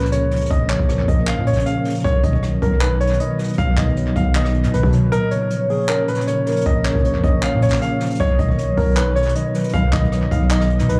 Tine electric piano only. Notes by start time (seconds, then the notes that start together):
Already playing: A#2 C#3 F3 A#3 C#4
0.12 C#3
0.31 F3
0.50 A#2
0.70 C#3
0.89 F3
1.08 A#3
1.27 C#4
1.47 A#2
1.66 C#3
1.85 F3
2.04 B2
2.24 D#3
2.43 F#3
2.62 B3
2.81 D#4
3.00 B2
3.20 D#3
3.39 F#3
3.58 B2
3.77 D#3
3.97 F#3
4.16 B3
4.35 D#4
4.54 B2
4.74 D#3
4.93 F#3
5.12 A#2
5.31 C#3
5.51 F3
5.70 A#3
5.89 C#4
6.08 A#2
6.27 C#3
6.47 F3
6.66 A#2
6.85 C#3
7.04 F3
7.24 A#3
7.43 C#4
7.62 A#2
7.81 C#3
8.00 F3
8.20 B2
8.39 D#3
8.58 F#3
8.77 B3
8.97 D#4
9.16 B2
9.35 D#3
9.54 F#3
9.74 B2
9.93 D#3
10.12 F#3
10.31 B3
10.50 D#4
10.70 B2
10.89 D#3